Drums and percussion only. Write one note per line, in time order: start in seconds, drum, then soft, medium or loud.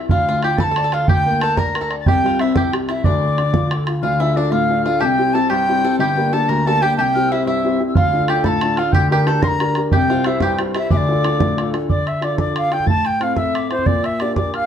0.09 bodhran medium
0.43 bodhran medium
0.58 bodhran medium
0.76 bodhran medium
0.92 bodhran medium
1.08 bodhran medium
1.41 bodhran medium
1.57 bodhran medium
1.75 bodhran medium
1.91 bodhran medium
2.06 bodhran medium
2.39 bodhran medium
2.56 bodhran loud
2.73 bodhran medium
2.89 bodhran medium
3.04 bodhran medium
3.38 bodhran medium
3.54 bodhran medium
3.71 bodhran medium
3.87 bodhran medium
7.95 bodhran medium
8.28 bodhran medium
8.44 bodhran medium
8.61 bodhran medium
8.77 bodhran medium
8.93 bodhran medium
9.27 bodhran medium
9.43 bodhran loud
9.60 bodhran medium
9.75 bodhran medium
9.92 bodhran medium
10.24 bodhran medium
10.40 bodhran medium
10.59 bodhran medium
10.75 bodhran medium
10.90 bodhran medium
11.24 bodhran medium
11.40 bodhran medium
11.58 bodhran medium
11.74 bodhran medium
11.90 bodhran medium
12.07 bodhran medium
12.22 bodhran medium
12.38 bodhran medium
12.56 bodhran medium
12.72 bodhran medium
12.80 bodhran soft
12.87 bodhran medium
13.05 bodhran soft
13.21 bodhran medium
13.36 bodhran medium
13.55 bodhran medium
13.71 bodhran medium
13.79 bodhran soft
13.86 bodhran medium
14.04 bodhran medium
14.20 bodhran medium
14.36 bodhran medium
14.54 bodhran medium